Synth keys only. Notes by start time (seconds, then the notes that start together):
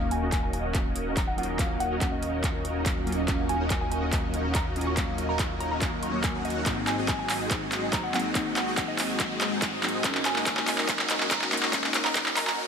Already playing: F#3 A#3 C#4 F5
1.37 F#3 A#3 C#4 F4
1.57 F#3 A#3 C#4 F5
3.06 F#3 A#3 C#4 F4
3.26 F#3 A#3 C#4 F5
4.75 F#3 A#3 C#4 F4
4.95 F#3 A#3 C#4 F5
6.12 F#3 A#3 C#4
6.16 F#4
6.64 F#3 A#3 C4
6.68 D#4
8.13 F#3 A#3 C4 D#4
8.33 F#3 A#3 C4
8.37 D#4
9.82 F#3 A#3 C4 D#4
10.02 G#3 A#3 C#4
10.06 D#4
11.51 G#3 A#3 C#4 D#4
11.71 G#3 A#3 C#4 D#4